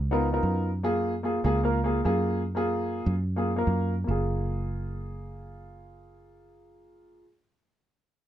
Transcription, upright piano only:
0, 0, Header, 1, 2, 480
1, 0, Start_track
1, 0, Key_signature, 6, "major"
1, 0, Tempo, 405405
1, 987, Time_signature, 4, 2, 24, 8
1, 9800, End_track
2, 0, Start_track
2, 0, Title_t, "Upright piano"
2, 0, Program_c, 0, 0
2, 131, Note_on_c, 0, 59, 94
2, 136, Note_on_c, 0, 63, 82
2, 144, Note_on_c, 0, 65, 88
2, 149, Note_on_c, 0, 70, 98
2, 308, Note_off_c, 0, 59, 0
2, 310, Note_off_c, 0, 63, 0
2, 314, Note_off_c, 0, 65, 0
2, 316, Note_off_c, 0, 70, 0
2, 377, Note_on_c, 0, 59, 77
2, 385, Note_on_c, 0, 63, 71
2, 388, Note_on_c, 0, 65, 70
2, 400, Note_on_c, 0, 70, 93
2, 803, Note_off_c, 0, 59, 0
2, 807, Note_off_c, 0, 63, 0
2, 808, Note_off_c, 0, 65, 0
2, 814, Note_off_c, 0, 70, 0
2, 987, Note_on_c, 0, 58, 83
2, 994, Note_on_c, 0, 65, 87
2, 1001, Note_on_c, 0, 68, 107
2, 1323, Note_off_c, 0, 58, 0
2, 1327, Note_off_c, 0, 65, 0
2, 1330, Note_off_c, 0, 68, 0
2, 1458, Note_on_c, 0, 58, 76
2, 1466, Note_on_c, 0, 65, 80
2, 1481, Note_on_c, 0, 68, 100
2, 1631, Note_off_c, 0, 58, 0
2, 1635, Note_off_c, 0, 65, 0
2, 1642, Note_off_c, 0, 68, 0
2, 1706, Note_on_c, 0, 58, 99
2, 1712, Note_on_c, 0, 65, 85
2, 1726, Note_on_c, 0, 68, 115
2, 1875, Note_off_c, 0, 58, 0
2, 1878, Note_off_c, 0, 65, 0
2, 1885, Note_off_c, 0, 68, 0
2, 1933, Note_on_c, 0, 58, 89
2, 1946, Note_on_c, 0, 65, 82
2, 1952, Note_on_c, 0, 70, 91
2, 2108, Note_off_c, 0, 58, 0
2, 2115, Note_off_c, 0, 65, 0
2, 2118, Note_off_c, 0, 70, 0
2, 2177, Note_on_c, 0, 58, 89
2, 2185, Note_on_c, 0, 65, 87
2, 2199, Note_on_c, 0, 68, 98
2, 2350, Note_off_c, 0, 58, 0
2, 2354, Note_off_c, 0, 65, 0
2, 2361, Note_off_c, 0, 68, 0
2, 2421, Note_on_c, 0, 58, 89
2, 2429, Note_on_c, 0, 65, 84
2, 2436, Note_on_c, 0, 68, 107
2, 2844, Note_off_c, 0, 58, 0
2, 2848, Note_off_c, 0, 65, 0
2, 2852, Note_off_c, 0, 68, 0
2, 3017, Note_on_c, 0, 58, 86
2, 3032, Note_on_c, 0, 65, 85
2, 3041, Note_on_c, 0, 68, 104
2, 3694, Note_off_c, 0, 58, 0
2, 3702, Note_off_c, 0, 65, 0
2, 3706, Note_off_c, 0, 68, 0
2, 3982, Note_on_c, 0, 58, 85
2, 3991, Note_on_c, 0, 65, 73
2, 4002, Note_on_c, 0, 68, 91
2, 4153, Note_off_c, 0, 58, 0
2, 4157, Note_off_c, 0, 65, 0
2, 4162, Note_off_c, 0, 68, 0
2, 4218, Note_on_c, 0, 58, 84
2, 4228, Note_on_c, 0, 65, 65
2, 4243, Note_on_c, 0, 70, 92
2, 4643, Note_off_c, 0, 58, 0
2, 4648, Note_off_c, 0, 65, 0
2, 4655, Note_off_c, 0, 70, 0
2, 4785, Note_on_c, 0, 58, 68
2, 4822, Note_on_c, 0, 65, 70
2, 4863, Note_on_c, 0, 68, 79
2, 8523, Note_off_c, 0, 58, 0
2, 8560, Note_off_c, 0, 65, 0
2, 8600, Note_off_c, 0, 68, 0
2, 9800, End_track
0, 0, End_of_file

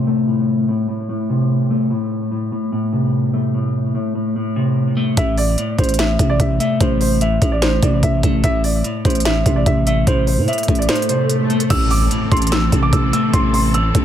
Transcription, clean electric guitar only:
0, 0, Header, 1, 2, 480
1, 0, Start_track
1, 0, Key_signature, 0, "minor"
1, 0, Tempo, 408163
1, 322, Time_signature, 4, 2, 24, 8
1, 16522, End_track
2, 0, Start_track
2, 0, Title_t, "Clean electric guitar"
2, 0, Program_c, 0, 27
2, 0, Note_on_c, 0, 45, 93
2, 0, Note_on_c, 0, 48, 86
2, 84, Note_on_c, 0, 57, 87
2, 309, Note_off_c, 0, 45, 0
2, 323, Note_on_c, 0, 45, 93
2, 791, Note_off_c, 0, 45, 0
2, 803, Note_off_c, 0, 48, 0
2, 805, Note_on_c, 0, 45, 88
2, 1030, Note_off_c, 0, 45, 0
2, 1044, Note_on_c, 0, 45, 80
2, 1270, Note_off_c, 0, 45, 0
2, 1283, Note_off_c, 0, 57, 0
2, 1285, Note_on_c, 0, 45, 90
2, 1524, Note_on_c, 0, 48, 85
2, 2003, Note_on_c, 0, 57, 92
2, 2229, Note_off_c, 0, 45, 0
2, 2243, Note_off_c, 0, 57, 0
2, 2243, Note_on_c, 0, 45, 91
2, 2244, Note_off_c, 0, 48, 0
2, 2709, Note_off_c, 0, 45, 0
2, 2724, Note_on_c, 0, 45, 81
2, 2951, Note_off_c, 0, 45, 0
2, 2966, Note_on_c, 0, 45, 76
2, 3188, Note_off_c, 0, 45, 0
2, 3202, Note_on_c, 0, 45, 92
2, 3441, Note_on_c, 0, 48, 81
2, 3924, Note_on_c, 0, 57, 86
2, 4153, Note_off_c, 0, 45, 0
2, 4167, Note_on_c, 0, 45, 89
2, 4630, Note_off_c, 0, 45, 0
2, 4642, Note_off_c, 0, 48, 0
2, 4644, Note_on_c, 0, 45, 91
2, 4869, Note_off_c, 0, 45, 0
2, 4883, Note_on_c, 0, 45, 77
2, 5112, Note_off_c, 0, 45, 0
2, 5123, Note_off_c, 0, 57, 0
2, 5126, Note_on_c, 0, 45, 92
2, 5364, Note_on_c, 0, 48, 79
2, 5842, Note_on_c, 0, 57, 82
2, 6067, Note_off_c, 0, 45, 0
2, 6081, Note_on_c, 0, 45, 87
2, 6083, Note_off_c, 0, 57, 0
2, 6084, Note_off_c, 0, 48, 0
2, 6550, Note_off_c, 0, 45, 0
2, 6564, Note_on_c, 0, 45, 82
2, 6787, Note_off_c, 0, 45, 0
2, 6801, Note_on_c, 0, 45, 76
2, 7026, Note_off_c, 0, 45, 0
2, 7040, Note_on_c, 0, 45, 94
2, 7283, Note_on_c, 0, 48, 84
2, 7763, Note_on_c, 0, 57, 92
2, 7989, Note_off_c, 0, 45, 0
2, 8003, Note_on_c, 0, 45, 97
2, 8470, Note_off_c, 0, 45, 0
2, 8483, Note_off_c, 0, 48, 0
2, 8484, Note_on_c, 0, 45, 91
2, 8709, Note_off_c, 0, 45, 0
2, 8724, Note_on_c, 0, 45, 80
2, 8950, Note_off_c, 0, 45, 0
2, 8963, Note_off_c, 0, 57, 0
2, 8964, Note_on_c, 0, 45, 89
2, 9206, Note_on_c, 0, 48, 85
2, 9684, Note_on_c, 0, 57, 89
2, 9908, Note_off_c, 0, 45, 0
2, 9923, Note_off_c, 0, 57, 0
2, 9923, Note_on_c, 0, 45, 91
2, 9925, Note_off_c, 0, 48, 0
2, 10389, Note_off_c, 0, 45, 0
2, 10403, Note_on_c, 0, 45, 81
2, 10631, Note_off_c, 0, 45, 0
2, 10645, Note_on_c, 0, 45, 74
2, 10868, Note_off_c, 0, 45, 0
2, 10882, Note_on_c, 0, 45, 93
2, 11121, Note_on_c, 0, 48, 83
2, 11604, Note_on_c, 0, 57, 87
2, 11833, Note_off_c, 0, 45, 0
2, 11847, Note_on_c, 0, 45, 92
2, 12310, Note_off_c, 0, 45, 0
2, 12322, Note_off_c, 0, 48, 0
2, 12324, Note_on_c, 0, 45, 89
2, 12549, Note_off_c, 0, 45, 0
2, 12563, Note_on_c, 0, 45, 73
2, 12792, Note_off_c, 0, 45, 0
2, 12803, Note_off_c, 0, 57, 0
2, 12806, Note_on_c, 0, 45, 93
2, 13045, Note_on_c, 0, 48, 80
2, 13523, Note_on_c, 0, 57, 78
2, 13749, Note_off_c, 0, 45, 0
2, 13763, Note_off_c, 0, 57, 0
2, 13763, Note_on_c, 0, 45, 91
2, 13764, Note_off_c, 0, 48, 0
2, 14231, Note_off_c, 0, 45, 0
2, 14245, Note_on_c, 0, 45, 86
2, 14468, Note_off_c, 0, 45, 0
2, 14482, Note_on_c, 0, 45, 75
2, 14707, Note_off_c, 0, 45, 0
2, 14721, Note_on_c, 0, 45, 98
2, 14963, Note_on_c, 0, 48, 88
2, 15444, Note_on_c, 0, 57, 95
2, 15670, Note_off_c, 0, 45, 0
2, 15684, Note_on_c, 0, 45, 97
2, 16151, Note_off_c, 0, 45, 0
2, 16163, Note_off_c, 0, 48, 0
2, 16165, Note_on_c, 0, 45, 88
2, 16389, Note_off_c, 0, 45, 0
2, 16403, Note_on_c, 0, 45, 81
2, 16522, Note_off_c, 0, 45, 0
2, 16522, Note_off_c, 0, 57, 0
2, 16522, End_track
0, 0, End_of_file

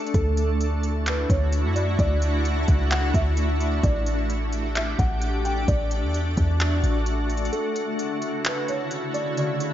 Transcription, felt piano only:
0, 0, Header, 1, 2, 480
1, 0, Start_track
1, 0, Key_signature, 2, "major"
1, 0, Tempo, 461538
1, 149, Time_signature, 4, 2, 24, 8
1, 10123, End_track
2, 0, Start_track
2, 0, Title_t, "Felt piano"
2, 0, Program_c, 0, 0
2, 0, Note_on_c, 0, 74, 106
2, 108, Note_off_c, 0, 74, 0
2, 145, Note_on_c, 0, 69, 98
2, 1065, Note_off_c, 0, 69, 0
2, 1116, Note_on_c, 0, 71, 72
2, 1341, Note_off_c, 0, 71, 0
2, 1351, Note_on_c, 0, 73, 86
2, 1801, Note_off_c, 0, 73, 0
2, 1824, Note_on_c, 0, 74, 72
2, 2054, Note_off_c, 0, 74, 0
2, 2074, Note_on_c, 0, 74, 95
2, 2990, Note_off_c, 0, 74, 0
2, 3027, Note_on_c, 0, 78, 87
2, 3256, Note_off_c, 0, 78, 0
2, 3268, Note_on_c, 0, 76, 81
2, 3947, Note_off_c, 0, 76, 0
2, 3986, Note_on_c, 0, 74, 92
2, 4906, Note_off_c, 0, 74, 0
2, 4943, Note_on_c, 0, 76, 85
2, 5174, Note_off_c, 0, 76, 0
2, 5188, Note_on_c, 0, 78, 83
2, 5640, Note_off_c, 0, 78, 0
2, 5668, Note_on_c, 0, 79, 80
2, 5896, Note_off_c, 0, 79, 0
2, 5909, Note_on_c, 0, 74, 106
2, 7787, Note_off_c, 0, 74, 0
2, 7825, Note_on_c, 0, 69, 101
2, 8745, Note_off_c, 0, 69, 0
2, 8797, Note_on_c, 0, 71, 68
2, 9021, Note_off_c, 0, 71, 0
2, 9032, Note_on_c, 0, 73, 86
2, 9481, Note_off_c, 0, 73, 0
2, 9505, Note_on_c, 0, 74, 76
2, 9735, Note_off_c, 0, 74, 0
2, 9756, Note_on_c, 0, 74, 94
2, 10123, Note_off_c, 0, 74, 0
2, 10123, End_track
0, 0, End_of_file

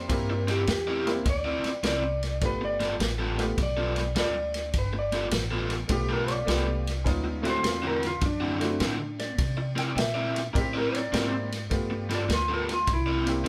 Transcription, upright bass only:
0, 0, Header, 1, 3, 480
1, 0, Start_track
1, 0, Tempo, 580833
1, 81, Time_signature, 4, 2, 24, 8
1, 11141, End_track
2, 0, Start_track
2, 0, Title_t, "Upright bass"
2, 0, Program_c, 0, 32
2, 76, Note_on_c, 0, 43, 89
2, 543, Note_off_c, 0, 43, 0
2, 556, Note_on_c, 0, 40, 91
2, 1023, Note_off_c, 0, 40, 0
2, 1038, Note_on_c, 0, 38, 85
2, 1335, Note_off_c, 0, 38, 0
2, 1512, Note_on_c, 0, 36, 83
2, 1981, Note_off_c, 0, 36, 0
2, 1993, Note_on_c, 0, 31, 80
2, 2461, Note_off_c, 0, 31, 0
2, 2474, Note_on_c, 0, 33, 90
2, 2942, Note_off_c, 0, 33, 0
2, 2958, Note_on_c, 0, 35, 77
2, 3424, Note_off_c, 0, 35, 0
2, 3435, Note_on_c, 0, 38, 82
2, 3902, Note_off_c, 0, 38, 0
2, 3917, Note_on_c, 0, 31, 88
2, 4383, Note_off_c, 0, 31, 0
2, 4393, Note_on_c, 0, 33, 92
2, 4861, Note_off_c, 0, 33, 0
2, 4869, Note_on_c, 0, 35, 73
2, 5339, Note_off_c, 0, 35, 0
2, 5352, Note_on_c, 0, 36, 79
2, 5820, Note_off_c, 0, 36, 0
2, 5833, Note_on_c, 0, 38, 80
2, 6301, Note_off_c, 0, 38, 0
2, 6310, Note_on_c, 0, 40, 90
2, 6780, Note_off_c, 0, 40, 0
2, 6792, Note_on_c, 0, 42, 85
2, 7261, Note_off_c, 0, 42, 0
2, 7275, Note_on_c, 0, 45, 77
2, 7743, Note_off_c, 0, 45, 0
2, 7753, Note_on_c, 0, 48, 91
2, 8222, Note_off_c, 0, 48, 0
2, 8233, Note_on_c, 0, 46, 94
2, 8702, Note_off_c, 0, 46, 0
2, 8719, Note_on_c, 0, 45, 79
2, 9185, Note_off_c, 0, 45, 0
2, 9198, Note_on_c, 0, 44, 86
2, 9664, Note_off_c, 0, 44, 0
2, 9675, Note_on_c, 0, 43, 88
2, 10142, Note_off_c, 0, 43, 0
2, 10158, Note_on_c, 0, 38, 94
2, 10624, Note_off_c, 0, 38, 0
2, 10640, Note_on_c, 0, 36, 76
2, 11104, Note_off_c, 0, 36, 0
2, 11141, End_track
3, 0, Start_track
3, 0, Title_t, "Muted upright bass strokes"
3, 1351, Note_on_c, 9, 29, 35
3, 1434, Note_off_c, 9, 29, 0
3, 11141, End_track
0, 0, End_of_file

